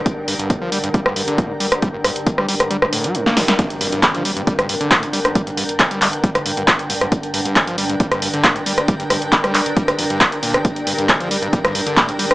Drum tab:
HH |x-oxx-oxx-oxx-ox|x-oxx-oxx-oxx-ox|xxoxxxoxxxoxxxox|xxoxxxoxxxoxxxox|
CP |----------------|----------------|----x-------x---|----x-x-----x---|
SD |---------r-----r|--r--r-r-r---ooo|---------r-----r|---------r-----r|
BD |o---o---o---o---|o---o-----------|o---o---o---o---|o---o---o---o---|

HH |xxoxxxoxxxoxxxox|xxoxxxoxxxoxxxox|xxoxxxoxxxoxxxox|
CP |----x-------x---|----x-x-----x---|----x-------x---|
SD |---------r-----r|--r--r---r-----r|---------r-----r|
BD |o---o---o---o---|o---o---o---o---|o---o---o---o---|